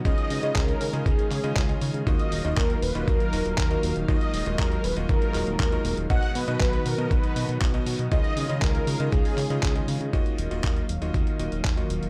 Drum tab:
HH |xxox-xoxxxoxxxox|xxoxxxoxxxoxxxox|xxoxxxoxxxoxxxox|xxoxxxoxxxoxxxox|
CP |----x-----x-x---|----x-------x---|----x-----x-x---|----x-------x---|
BD |o---o---o---o---|o---o---o---o---|o---o---o---o---|o---o---o---o---|

HH |xxoxxxoxxooxxxox|xxxxxxxxxxxxxxxx|
CP |----x-----x-x---|----x-------x---|
BD |o---o---o---o---|o---o---o---o---|